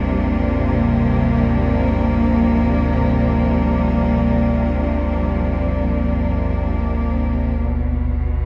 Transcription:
Already playing: synth drone G1 D2, cello section G2 C3 F3 A#3 D4
7.63 cello section B2

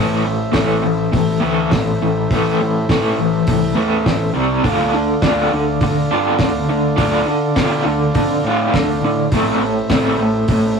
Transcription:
Already playing: picked electric bass A1, overdriven electric guitar A2 E3 A3, transistor combo organ A4 C5
0.00 transistor combo organ E5
0.25 overdriven electric guitar A2 E3
0.52 picked electric bass A1, overdriven electric guitar A2 E3 A3, kick, snare, open hi-hat
0.83 picked electric bass A1, overdriven electric guitar A2 E3
1.12 picked electric bass A1, overdriven electric guitar A2 E3, kick, open hi-hat
1.40 picked electric bass D2, overdriven electric guitar A2 E3 A3
1.71 picked electric bass A1, overdriven electric guitar A2 E3, kick, snare, open hi-hat
2.02 picked electric bass A1, overdriven electric guitar A2 E3
2.30 picked electric bass A1, overdriven electric guitar A2 E3 A3, kick, open hi-hat
2.60 picked electric bass A2, overdriven electric guitar A2 E3
2.89 overdriven electric guitar A2 E3 A3, picked electric bass A2, kick, snare, open hi-hat
3.17 picked electric bass A1, overdriven electric guitar A2 E3
3.47 picked electric bass C2, overdriven electric guitar A2 E3, kick, open hi-hat
3.75 picked electric bass E2, overdriven electric guitar A2 E3 A3
4.06 picked electric bass A1, overdriven electric guitar A2 E3, kick, snare, open hi-hat
4.34 picked electric bass C2, overdriven electric guitar C3 G3 C4
4.62 picked electric bass D2, overdriven electric guitar D3 D4 F4, transistor combo organ A4 D5 F5, kick, open hi-hat
4.94 overdriven electric guitar D3 D4
5.22 picked electric bass D2, overdriven electric guitar D3 D4 F4, kick, snare, open hi-hat
5.52 picked electric bass D2, overdriven electric guitar D3 D4
5.81 picked electric bass D2, overdriven electric guitar D3 D4, kick, open hi-hat
6.11 picked electric bass G2, overdriven electric guitar D3 D4 F4
6.39 picked electric bass D2, overdriven electric guitar D3 D4, kick, snare, open hi-hat
6.69 picked electric bass D2, overdriven electric guitar D3 D4
6.97 picked electric bass D2, overdriven electric guitar D3 D4 F4, kick, open hi-hat
7.25 picked electric bass D3, overdriven electric guitar D3 D4
7.56 overdriven electric guitar D3 D4 F4, picked electric bass D3, kick, snare, open hi-hat
7.85 picked electric bass D2, overdriven electric guitar D3 D4
8.14 picked electric bass F2, overdriven electric guitar D3 D4, kick, open hi-hat
8.44 picked electric bass A2, overdriven electric guitar D3 D4 F4
8.73 picked electric bass D2, overdriven electric guitar D3 D4, kick, snare, open hi-hat
9.01 picked electric bass A2, overdriven electric guitar D3 D4
9.31 picked electric bass A1, overdriven electric guitar A2 A3, transistor combo organ A4 C5, kick, open hi-hat
9.36 overdriven electric guitar C4, transistor combo organ E5
9.63 overdriven electric guitar A2 A3
9.90 picked electric bass A1, overdriven electric guitar A2 A3 C4, kick, snare, open hi-hat
10.17 picked electric bass A1, overdriven electric guitar A2 A3
10.48 picked electric bass A1, overdriven electric guitar A2, kick, open hi-hat
10.52 overdriven electric guitar A3

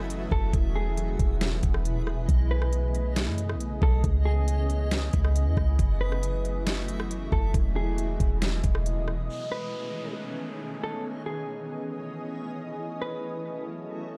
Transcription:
Already playing: 808-style bass F#1, ambient pad C#3 E3 F#3 A3 E4, synth texture A3 F#4 E5
0.10 closed hi-hat
0.31 808-style bass F#1, clean electric guitar A4, kick
0.53 808-style bass E1, ambient pad B2 B3 E4 G#4, synth texture G#3 E4 D#5, kick, closed hi-hat
0.76 clean electric guitar G#4
0.97 closed hi-hat
1.19 808-style bass E1, kick, closed hi-hat
1.41 snare, closed hi-hat
1.63 808-style bass E1, kick, closed hi-hat
1.74 cross-stick
1.85 closed hi-hat
1.96 808-style bass D#1
2.07 cross-stick
2.12 808-style bass E1
2.29 808-style bass B1, ambient pad C#3 A3 B3 D#5, synth texture A3 G#4 C#5, kick, closed hi-hat
2.51 clean electric guitar B4
2.62 cross-stick
2.73 closed hi-hat
2.95 closed hi-hat
3.16 snare, closed hi-hat
3.27 808-style bass F#2
3.38 closed hi-hat
3.49 cross-stick
3.55 808-style bass B1
3.60 closed hi-hat
3.82 808-style bass B1, clean electric guitar A4, kick
4.04 808-style bass C#2, ambient pad E3, synth texture B3 E4, kick, closed hi-hat
4.25 clean electric guitar G#4
4.48 closed hi-hat
4.70 closed hi-hat
4.91 snare, closed hi-hat
5.13 808-style bass C#2, kick, closed hi-hat
5.25 cross-stick
5.36 closed hi-hat
5.46 808-style bass E2
5.57 808-style bass C#2, kick, cross-stick
5.79 808-style bass F#1, ambient pad F#3 A3 E4, synth texture A3 F#4 E5, kick, closed hi-hat
6.01 clean electric guitar B4
6.12 cross-stick
6.23 closed hi-hat
6.45 closed hi-hat
6.67 snare, closed hi-hat
6.88 closed hi-hat
7.00 cross-stick
7.11 closed hi-hat
7.32 808-style bass F#1, clean electric guitar A4, kick
7.54 808-style bass E1, ambient pad B2 G#3 D#5, synth texture G#3 E4 D#5, kick, closed hi-hat
7.76 clean electric guitar G#4
7.98 closed hi-hat
8.20 808-style bass E1, kick, closed hi-hat
8.42 snare, closed hi-hat
8.64 808-style bass E1, kick, closed hi-hat
8.75 cross-stick
8.86 closed hi-hat
8.97 808-style bass D#1
9.08 cross-stick
9.13 808-style bass E1
9.29 ambient pad D#3 A3 B3 C#4 G#4, synth texture A3 D#4 G#4 B4 C#5, downlifter
9.52 clean electric guitar B4
10.84 clean electric guitar A4
11.05 ambient pad E3 G#4 D#5, synth texture B3 E4 D#5
11.26 clean electric guitar G#4
12.80 ambient pad F#3 A3 E4 A4, synth texture A3 F#4 E5
13.02 clean electric guitar B4

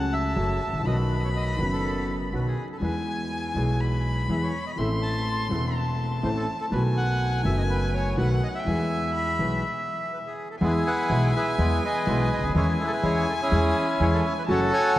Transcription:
Already playing: upright bass C#2, grand piano C#2 C#3 F#3 A3 F#4, bandoneon F#5, violin A5
0.13 bandoneon E5
0.36 upright bass F#1, grand piano F#2 C#3 F#3 A3 F#4
0.67 upright bass G#1, grand piano G#1
0.73 grand piano A1, upright bass A1
0.79 upright bass A#1, grand piano A#1
0.83 upright bass B1, grand piano B1 B2 D#3 F#3 B3 F#4, bandoneon D#5, violin B5
1.11 bandoneon B4
1.20 bandoneon D#5
1.24 bandoneon C#5
1.36 bandoneon D#5
1.57 upright bass F#1, grand piano F#1 F#2 D#3 F#3 B3
1.61 grand piano F#4, bandoneon B4
1.73 bandoneon A4
2.32 upright bass B1, grand piano B1 B2 D#3 F#3 B3 F#4, bandoneon B4
2.47 bandoneon G#4
2.72 bandoneon A4
2.80 upright bass E2, grand piano E2 E3 G#3 B3, bandoneon B4, violin G#5
2.84 grand piano G#4
3.08 bandoneon G#5
3.54 upright bass B1, grand piano B1 B2 E3 G#3 B3 G#4
3.80 violin B5
4.28 upright bass E2, grand piano E2 E3 G#3 B3 G#4, bandoneon E5
4.43 bandoneon C#5
4.66 bandoneon D#5
4.76 grand piano A1 A2 E3 A3 C4 A4, upright bass A1, bandoneon E5, violin C6
5.02 bandoneon A5
5.49 grand piano E1 E2 E3 A3 C4 A4, upright bass E1
5.77 violin A5
6.23 grand piano A1 A2 E3 A3 C4 A4, upright bass A1, bandoneon C5
6.36 bandoneon A4
6.61 bandoneon A4
6.70 upright bass B1, grand piano B1 B2 D#3 A3 B3, bandoneon B4, violin G#5
6.74 grand piano F#4
6.97 bandoneon F#5
7.42 grand piano F#1 F#2 D#3 A3 B3, upright bass F#1, bandoneon E5
7.47 grand piano F#4
7.58 bandoneon D#5
7.70 bandoneon B4
7.94 bandoneon C#5
8.17 grand piano B1 B2 D#3 A3 B3 F#4, upright bass B1, bandoneon B4, violin F#5
8.43 bandoneon D#5
8.55 bandoneon E5
8.60 violin G5
8.65 upright bass E2, grand piano E2 E3 G#3 B3, violin G#5
8.69 grand piano G#4
9.15 violin B5
9.39 upright bass B1, grand piano B1 B2 E3 G#3 B3 G#4
10.13 bandoneon B4
10.27 bandoneon G#4
10.50 bandoneon A4
10.61 upright bass E2, grand piano E2 E3 G#3 B3 G#4, bandoneon G#3 B3 E4 G#4 B4, violin G#5
10.87 bandoneon B4 F#5
11.10 upright bass B1, grand piano B1 B2 E3 G#3 B3 G#4, bandoneon G#3 B3 E4
11.36 bandoneon G#4 B4 E5
11.58 upright bass E2, grand piano E2 E3 G#3 B3 G#4, bandoneon G#3 B3 E4
11.85 bandoneon G#4 B4 D#5
12.06 grand piano B1 B2 E3 G#3 B3 G#4, upright bass B1, bandoneon G#3 B3 E4
12.33 grand piano C#2, bandoneon D#5
12.38 upright bass C#2
12.43 upright bass D2, grand piano D2
12.49 upright bass D#2, grand piano D#2
12.55 upright bass E2, grand piano E2 E3 G#3 C#4 G#4, bandoneon G#3 C#4 E4 G#4 C#5, violin G#5
12.84 bandoneon A4 B4
12.93 bandoneon B4
13.03 grand piano E2 E3 G#3 C#4 G#4, upright bass E2, bandoneon G#3 C#4 E4 C#5
13.29 bandoneon A4
13.42 bandoneon C#4 E4 G#4
13.51 upright bass E2, grand piano E2 E3 G#3 C#4 G#4, bandoneon G#3 C#4 E4
14.00 upright bass E2, grand piano E2 E3 G#3 C#4 G#4, bandoneon G#3 C#4 E4 C#5
14.14 bandoneon A4
14.38 bandoneon B4
14.47 upright bass F#1, grand piano F#2 C#3 F#3 A3 F#4, bandoneon A3 C#4 F#4 A4 C#5, violin A5
14.73 bandoneon C#5 G#5
14.96 bandoneon A3

